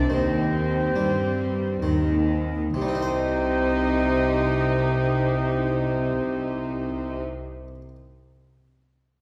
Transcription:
Already playing: harpsichord C4 D#4
0.10 double bass section D#2, cello section D#3, harpsichord D#3, viola section C4, violin section C4 C5, flute G4
0.94 double bass section G2, cello section G3, harpsichord G3
1.82 double bass section D#2, cello section D#3, harpsichord D#3
2.74 double bass section C2, harpsichord C3, cello section C3, viola section D#4, violin section D#4 C5, flute G4
2.82 harpsichord G3
2.88 harpsichord C4
2.95 harpsichord D#4
3.02 harpsichord C5

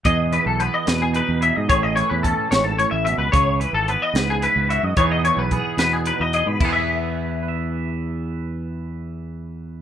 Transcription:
0.05 clean electric guitar E2 G#4 D#5, fingered electric bass E2, kick, closed hi-hat
0.32 clean electric guitar E3 B4, closed hi-hat
0.46 fingered electric bass B1, clean electric guitar A4
0.60 clean electric guitar B3 B4, closed hi-hat
0.74 clean electric guitar D#5
0.86 fingered electric bass E2, clean electric guitar B2 B4, snare, closed hi-hat
1.02 clean electric guitar G#4
1.13 clean electric guitar D#4 B4, closed hi-hat
1.29 fingered electric bass E2
1.41 clean electric guitar G#4 E5, closed hi-hat
1.56 fingered electric bass G#2, clean electric guitar D#5
1.68 fingered electric bass A1, clean electric guitar A2 G#4 C#5, kick, closed hi-hat
1.83 clean electric guitar D#5
1.96 clean electric guitar E3 C#5, closed hi-hat
2.10 fingered electric bass E2, clean electric guitar B4
2.23 clean electric guitar C#4 A4, kick, closed hi-hat
2.51 fingered electric bass A1, clean electric guitar G#2 C#5, snare, closed hi-hat
2.64 clean electric guitar A4
2.79 clean electric guitar A2 C#5, closed hi-hat
2.91 fingered electric bass A1, clean electric guitar E5
3.05 clean electric guitar B2 E5, closed hi-hat
3.18 fingered electric bass C#2, clean electric guitar B4
3.32 fingered electric bass C#2, clean electric guitar C#3 G#4 C#5, kick, closed hi-hat
3.60 clean electric guitar E3 B4, closed hi-hat
3.73 fingered electric bass G#1, clean electric guitar A4
3.88 clean electric guitar B3 B4, closed hi-hat
4.02 clean electric guitar D#5
4.14 fingered electric bass C#2, clean electric guitar G#2 B4, snare, closed hi-hat
4.30 clean electric guitar G#4
4.42 clean electric guitar E4 B4, closed hi-hat
4.56 fingered electric bass C#2
4.69 clean electric guitar F#4 E5, closed hi-hat
4.83 fingered electric bass F#2, clean electric guitar D#5
4.97 clean electric guitar E2 E3 B3 D#4 G#4 C#5, fingered electric bass E2, kick, closed hi-hat
5.11 clean electric guitar D#5
5.24 clean electric guitar E3 C#5, closed hi-hat
5.37 fingered electric bass B1, clean electric guitar B4
5.51 clean electric guitar B3 G#4, kick, closed hi-hat
5.78 fingered electric bass E2, clean electric guitar B2 B4, snare, closed hi-hat
5.93 clean electric guitar G#4
6.06 clean electric guitar D#4 B4, closed hi-hat
6.20 fingered electric bass E2, clean electric guitar D#5
6.33 clean electric guitar G#4 D#5, closed hi-hat
6.47 fingered electric bass G#2, clean electric guitar B4
6.60 fingered electric bass E2, clean electric guitar E2 E3 B3 E4, kick, crash
6.65 clean electric guitar G#4
6.69 clean electric guitar B4 E5
7.43 clean electric guitar B4
7.48 clean electric guitar E5

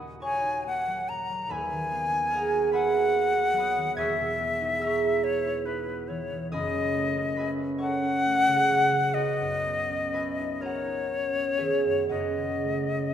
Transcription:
Already playing: harp D#1 D#2 A#2 A#3 C#4 F#4 A#4 C#5 D#5 F#5 G#5 A#5 B5 D#6
0.02 harp D#4
0.20 harp F#4 C#5 C#6, flute G#5
0.24 harp F#5 A#5
0.45 harp D#4
0.66 harp A#3, flute F#5
0.88 harp F#3
1.09 harp A#2, flute A#5
1.31 harp F#3
1.48 harp D#1 D#2 B4 E5 B5, flute G#5
1.53 harp G#5
1.72 harp D#3
1.92 harp B3
2.13 harp D#4
2.31 harp G#4 A#4 D#5 A#5
2.36 harp F#5
2.53 harp F#4
2.72 harp G#4 B4 E5 G#5 B5, flute F#5
2.96 harp F#4
3.17 harp D#4
3.37 harp B3
3.53 harp F#3 F#5 F#6
3.58 harp B5 D#6
3.78 harp D#3
3.96 harp E1 E2 G#5 C#6 G#6, flute E5
4.01 harp E6
4.21 harp B2
4.40 harp B3
4.61 harp D#4
4.79 harp G#4 E5 E6
4.84 harp A#5 C#6
5.04 harp E4
5.24 harp B4, flute C#5
5.45 harp E4
5.66 harp D#4, flute B4
5.88 harp B3
6.08 harp E3, flute C#5
6.31 harp B2
6.52 harp F#1 F#2 D#5 G#5 B5 D#6, flute D#5
6.74 harp F#3
6.95 harp A3
7.16 harp C#4
7.35 harp F#4 B4 E5 B5
7.40 harp G#5
7.59 harp C#4
7.78 harp A4 C#5 F#5 A5 C#6, flute F#5
8.03 harp C#4
8.25 harp A3
8.48 harp C#3
8.70 harp F#3
8.93 harp C#3
9.14 harp B1 F#4 B4 D#5 F#5, flute D#5
9.40 harp F#2
9.66 harp B3
9.90 harp C#4
10.13 harp F#4 B4 E5 G#5 B5
10.39 harp D#4
10.60 harp F#4 A#4 D#5 A#5, flute C#5
10.66 harp F#5
10.87 harp D#4
11.10 harp C#4
11.35 harp B3
11.58 harp D#3 G#4 C#5 E5 G#5
11.85 harp F#2
12.09 harp F#1 F#2 F#4 B4 D#5 F#5, flute D#5
12.37 harp C#3
12.63 harp A3
12.89 harp C#4

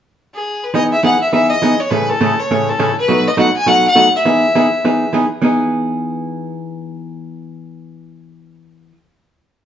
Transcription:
0.34 fiddle G#4
0.63 fiddle B4
0.74 hollow-body jazz guitar E3 B3 D#4 G#4, fiddle D#5
0.92 fiddle E5
1.03 hollow-body jazz guitar E3 B3 D#4 G#4, fiddle F#5
1.21 fiddle E5
1.32 hollow-body jazz guitar E3 B3 D#4 G#4, fiddle E5
1.49 fiddle D#5
1.62 hollow-body jazz guitar E3 B3 D#4 G#4
1.80 fiddle C#5
1.90 hollow-body jazz guitar A2 C#3 E3 A3 C#4 G#4, fiddle B4
2.09 fiddle A4
2.21 hollow-body jazz guitar A2 C#3 E3 A3 C#4 G#4
2.39 fiddle C#5
2.51 hollow-body jazz guitar A2 C#3 E3 A3 C#4 G#4
2.69 fiddle A4
2.79 hollow-body jazz guitar A2 C#3 E3 A3 C#4 G#4
2.98 fiddle B4
3.08 hollow-body jazz guitar B2 F#3 A3 D#4 F#4
3.28 fiddle D#5
3.37 hollow-body jazz guitar B2 F#3 A3 D#4 F#4, fiddle F#5
3.56 fiddle G#5
3.66 hollow-body jazz guitar B2 F#3 A3 D#4 F#4, fiddle F#5
3.87 fiddle F#5
3.95 hollow-body jazz guitar B2 F#3 A3 D#4 F#4
4.16 fiddle E5
4.25 hollow-body jazz guitar E3 B3 D#4 G#4
4.55 hollow-body jazz guitar E3 B3 D#4 G#4
4.85 hollow-body jazz guitar E3 B3 D#4 G#4
5.13 hollow-body jazz guitar E3 B3 D#4 G#4
5.42 hollow-body jazz guitar E3 B3 D#4 G#4

